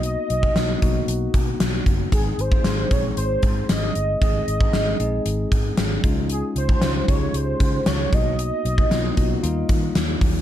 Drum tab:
HH |x-x-x-x-x-x-x-x-|x-x-x-x-x-x-x-x-|x-x-x-x-x-x-x-x-|x-x-x-x-x-x-x-x-|
SD |----o-------o---|----o-------o---|----o-------o---|----o-------o---|
BD |---o--o---o---o-|o--o--o---o-----|o--o------o---o-|---o--o---o---o-|

HH |x-x-x-x-x-x-x-o-|
SD |----o-------o---|
BD |---o--o---o---o-|